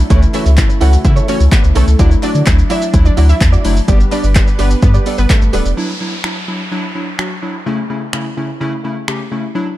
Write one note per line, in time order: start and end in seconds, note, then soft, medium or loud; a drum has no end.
0.00 3.84 E4 medium
0.10 0.26 C#2 loud
0.10 1.97 C#3 medium
0.10 0.23 E3 loud
0.10 0.23 A3 loud
0.10 1.97 A3 medium
0.10 0.23 C#4 loud
0.10 0.25 E4 loud
0.10 0.23 E4 loud
0.10 0.22 A4 loud
0.10 0.21 C#5 loud
0.10 kick loud
0.10 closed hi-hat medium
0.10 shaker medium
0.22 muted clean electric guitar stroke medium
0.22 shaker medium
0.34 0.47 E3 medium
0.34 0.47 A3 medium
0.34 0.47 C#4 medium
0.34 0.46 E4 medium
0.34 0.44 E4 medium
0.34 0.47 F#4 medium
0.34 0.45 A4 medium
0.34 0.44 C#5 medium
0.34 0.43 E5 medium
0.34 clap medium
0.34 open hi-hat medium
0.34 shaker medium
0.45 0.62 C#2 loud
0.45 0.58 E4 soft
0.45 0.58 A4 medium
0.45 0.57 C#5 medium
0.45 shaker medium
0.57 0.70 E3 medium
0.57 0.70 A3 medium
0.57 0.70 C#4 medium
0.57 0.70 E4 loud
0.57 kick loud
0.57 clap loud
0.57 clap medium
0.57 closed hi-hat medium
0.57 shaker medium
0.69 muted clean electric guitar stroke medium
0.69 shaker medium
0.81 0.97 C#2 loud
0.81 0.94 E3 medium
0.81 0.94 A3 medium
0.81 0.94 C#4 medium
0.81 0.96 E4 loud
0.81 0.94 E4 medium
0.81 0.91 F#4 medium
0.81 0.92 A4 loud
0.81 0.92 C#5 loud
0.81 0.91 F#5 medium
0.81 open hi-hat medium
0.81 shaker medium
0.93 muted clean electric guitar stroke soft
0.93 shaker loud
1.05 1.21 C#3 loud
1.05 1.17 E3 loud
1.05 1.17 A3 medium
1.05 1.18 C#4 medium
1.05 1.18 E4 loud
1.05 1.24 E4 medium
1.05 1.24 E5 medium
1.05 muted clean electric guitar stroke soft
1.05 kick loud
1.05 closed hi-hat medium
1.05 shaker medium
1.16 1.27 E4 medium
1.16 1.28 A4 medium
1.16 1.28 C#5 medium
1.16 shaker medium
1.28 1.41 E3 medium
1.28 1.41 A3 medium
1.28 1.41 C#4 medium
1.28 1.38 C#4 medium
1.28 1.43 E4 medium
1.28 1.41 F#4 medium
1.28 1.40 A4 medium
1.28 1.38 C#5 medium
1.28 1.39 C#5 loud
1.28 open hi-hat medium
1.28 shaker medium
1.40 1.48 C#2 loud
1.40 muted clean electric guitar stroke soft
1.40 shaker medium
1.52 1.65 E3 medium
1.52 1.65 A3 medium
1.52 1.62 B3 medium
1.52 1.65 C#4 medium
1.52 1.65 G4 medium
1.52 1.61 B4 medium
1.52 kick loud
1.52 clap medium
1.52 clap loud
1.52 closed hi-hat medium
1.52 shaker medium
1.64 1.72 C#2 medium
1.64 muted clean electric guitar stroke medium
1.64 shaker medium
1.75 1.84 B1 loud
1.75 1.88 E3 medium
1.75 1.88 A3 medium
1.75 1.86 A3 medium
1.75 1.88 C#4 medium
1.75 1.91 E4 medium
1.75 1.88 E4 medium
1.75 1.85 A4 medium
1.75 1.87 A4 loud
1.75 1.86 C#5 medium
1.75 open hi-hat medium
1.75 shaker medium
1.87 1.95 C#2 medium
1.87 muted clean electric guitar stroke medium
1.87 shaker medium
1.99 2.15 D2 loud
1.99 2.12 F#3 loud
1.99 3.86 F#3 medium
1.99 2.12 A3 loud
1.99 5.73 D4 medium
1.99 2.12 D4 loud
1.99 2.14 E4 medium
1.99 2.12 E4 loud
1.99 2.11 F#4 loud
1.99 2.10 D5 loud
1.99 kick loud
1.99 closed hi-hat medium
1.99 shaker medium
2.11 muted clean electric guitar stroke soft
2.11 shaker medium
2.23 2.35 F#3 medium
2.23 2.36 A3 medium
2.23 2.36 D4 medium
2.23 2.33 D4 medium
2.23 2.35 E4 medium
2.23 2.36 F#4 medium
2.23 2.34 F#4 medium
2.23 2.32 D5 medium
2.23 2.33 D5 medium
2.23 clap medium
2.23 open hi-hat medium
2.23 shaker medium
2.34 2.43 D3 loud
2.34 2.47 E4 medium
2.34 2.47 F#4 medium
2.34 2.46 D5 medium
2.34 shaker medium
2.46 2.62 D2 medium
2.46 2.59 F#3 loud
2.46 2.59 A3 medium
2.46 2.59 D4 medium
2.46 2.59 E4 loud
2.46 kick loud
2.46 clap loud
2.46 closed hi-hat medium
2.46 shaker medium
2.58 muted clean electric guitar stroke soft
2.58 shaker medium
2.70 2.83 F#3 medium
2.70 2.83 A3 medium
2.70 2.83 D4 medium
2.70 2.85 E4 medium
2.70 2.83 E4 medium
2.70 2.80 E4 medium
2.70 2.82 F#4 medium
2.70 2.81 D5 loud
2.70 2.80 E5 medium
2.70 open hi-hat medium
2.70 shaker medium
2.82 muted clean electric guitar stroke medium
2.82 shaker loud
2.93 3.09 D2 loud
2.93 3.06 F#3 loud
2.93 3.06 A3 loud
2.93 3.06 D4 medium
2.93 3.07 E4 loud
2.93 muted clean electric guitar stroke soft
2.93 kick loud
2.93 closed hi-hat medium
2.93 shaker medium
3.05 3.15 D4 medium
3.05 3.15 D5 medium
3.05 muted clean electric guitar stroke soft
3.05 shaker medium
3.17 3.33 D2 loud
3.17 3.30 F#3 medium
3.17 3.30 A3 medium
3.17 3.30 D4 medium
3.17 3.32 E4 loud
3.17 3.30 E4 medium
3.17 3.29 F#4 loud
3.17 3.28 D5 loud
3.17 open hi-hat medium
3.17 shaker medium
3.29 3.39 E4 medium
3.29 3.39 E5 medium
3.29 muted clean electric guitar stroke medium
3.29 shaker medium
3.41 3.57 E2 loud
3.41 3.54 F#3 medium
3.41 3.54 A3 medium
3.41 3.54 D4 medium
3.41 3.54 E4 medium
3.41 muted clean electric guitar stroke soft
3.41 kick loud
3.41 clap medium
3.41 clap loud
3.41 closed hi-hat medium
3.41 shaker medium
3.52 3.63 E4 medium
3.52 3.64 F#4 medium
3.52 3.64 D5 medium
3.52 shaker medium
3.64 3.80 F#1 loud
3.64 3.77 F#3 medium
3.64 3.77 A3 medium
3.64 3.77 D4 medium
3.64 3.76 E4 medium
3.64 3.77 E4 loud
3.64 3.76 F#4 medium
3.64 3.75 D5 medium
3.64 open hi-hat medium
3.64 shaker medium
3.76 muted clean electric guitar stroke medium
3.76 shaker medium
3.88 4.04 G1 loud
3.88 4.01 G3 loud
3.88 5.75 G3 medium
3.88 4.01 B3 loud
3.88 4.01 D4 loud
3.88 4.03 G4 medium
3.88 4.01 G4 loud
3.88 5.75 B4 medium
3.88 4.00 B4 medium
3.88 3.99 D5 medium
3.88 kick loud
3.88 closed hi-hat medium
3.88 shaker medium
4.00 muted clean electric guitar stroke soft
4.00 shaker medium
4.11 4.24 G3 medium
4.11 4.24 B3 medium
4.11 4.25 D4 medium
4.11 4.22 D4 medium
4.11 4.23 G4 medium
4.11 4.25 G4 medium
4.11 4.23 B4 medium
4.11 4.21 D5 medium
4.11 4.22 D5 medium
4.11 clap medium
4.11 open hi-hat medium
4.11 shaker medium
4.23 4.39 G1 loud
4.23 4.36 G4 medium
4.23 4.36 B4 medium
4.23 4.35 D5 medium
4.23 shaker medium
4.35 4.48 G3 loud
4.35 4.48 B3 medium
4.35 4.48 D4 medium
4.35 4.48 G4 loud
4.35 kick loud
4.35 clap loud
4.35 clap medium
4.35 closed hi-hat medium
4.35 shaker medium
4.47 muted clean electric guitar stroke medium
4.47 shaker medium
4.59 4.75 G1 medium
4.59 4.72 G3 medium
4.59 4.72 B3 medium
4.59 4.69 B3 medium
4.59 4.72 D4 medium
4.59 4.74 G4 medium
4.59 4.72 G4 medium
4.59 4.68 B4 medium
4.59 4.70 B4 medium
4.59 4.69 D5 loud
4.59 open hi-hat medium
4.59 shaker medium
4.71 muted clean electric guitar stroke medium
4.71 shaker loud
4.82 4.98 G2 loud
4.82 4.95 G3 loud
4.82 4.95 B3 medium
4.82 4.93 B3 medium
4.82 4.95 D4 medium
4.82 4.95 G4 loud
4.82 4.92 B4 medium
4.82 muted clean electric guitar stroke soft
4.82 kick loud
4.82 closed hi-hat medium
4.82 shaker medium
4.94 5.05 G4 medium
4.94 5.05 B4 medium
4.94 5.06 D5 medium
4.94 shaker medium
5.06 5.19 G3 medium
5.06 5.19 B3 medium
5.06 5.19 D4 medium
5.06 5.21 G4 medium
5.06 5.19 A4 medium
5.06 5.18 B4 medium
5.06 5.17 D5 loud
5.06 open hi-hat medium
5.06 shaker medium
5.18 5.26 G1 medium
5.18 5.28 B3 medium
5.18 5.28 B4 medium
5.18 muted clean electric guitar stroke soft
5.18 shaker medium
5.30 5.42 G3 medium
5.30 5.40 A3 medium
5.30 5.43 B3 medium
5.30 5.43 D4 medium
5.30 5.43 G4 medium
5.30 5.39 A4 medium
5.30 muted clean electric guitar stroke soft
5.30 kick loud
5.30 clap loud
5.30 clap medium
5.30 closed hi-hat medium
5.30 shaker medium
5.41 5.50 G1 medium
5.41 muted clean electric guitar stroke soft
5.41 shaker medium
5.53 5.61 D1 medium
5.53 5.66 G3 medium
5.53 5.66 B3 medium
5.53 5.63 B3 medium
5.53 5.66 D4 medium
5.53 5.65 G4 medium
5.53 5.66 A4 medium
5.53 5.63 B4 medium
5.53 5.64 B4 medium
5.53 5.64 D5 loud
5.53 open hi-hat medium
5.53 shaker medium
5.65 5.73 E1 loud
5.65 5.78 G4 medium
5.65 5.77 B4 medium
5.65 5.77 D5 medium
5.65 shaker medium
5.77 5.90 F#3 loud
5.77 5.90 D4 medium
5.77 5.90 E4 loud
5.77 downlifter medium
6.01 6.13 F#3 medium
6.01 6.13 D4 medium
6.01 6.14 E4 medium
6.24 6.37 F#3 medium
6.24 6.37 D4 medium
6.24 6.37 E4 medium
6.24 finger snap loud
6.48 6.61 F#3 medium
6.48 6.61 D4 medium
6.48 6.61 E4 medium
6.71 6.84 F#3 loud
6.71 6.84 D4 loud
6.71 6.84 E4 loud
6.95 7.08 F#3 medium
6.95 7.08 D4 medium
6.95 7.08 E4 medium
7.19 7.32 F#3 medium
7.19 7.32 D4 medium
7.19 7.32 F#4 medium
7.19 finger snap loud
7.42 7.55 F#3 medium
7.42 7.55 D4 medium
7.42 7.55 E4 medium
7.66 7.79 C#3 loud
7.66 7.79 A3 loud
7.66 7.79 C#4 loud
7.66 7.79 E4 loud
7.90 8.02 C#3 medium
7.90 8.02 A3 medium
7.90 8.03 C#4 medium
7.90 8.03 E4 medium
8.13 8.26 C#3 medium
8.13 8.26 A3 medium
8.13 8.26 C#4 medium
8.13 8.26 E4 medium
8.13 finger snap loud
8.37 8.50 C#3 medium
8.37 8.50 A3 medium
8.37 8.50 C#4 medium
8.37 8.50 E4 medium
8.60 8.73 C#3 loud
8.60 8.73 A3 loud
8.60 8.73 C#4 loud
8.60 8.73 E4 loud
8.84 8.97 C#3 medium
8.84 8.97 A3 medium
8.84 8.97 C#4 medium
8.84 8.97 E4 loud
9.08 9.20 C#3 medium
9.08 9.21 A3 medium
9.08 9.21 C#4 medium
9.08 9.21 G4 medium
9.08 finger snap loud
9.31 9.44 C#3 medium
9.31 9.44 A3 medium
9.31 9.44 C#4 medium
9.31 9.44 E4 medium
9.55 9.68 F#3 loud
9.55 9.68 D4 loud
9.55 9.68 E4 loud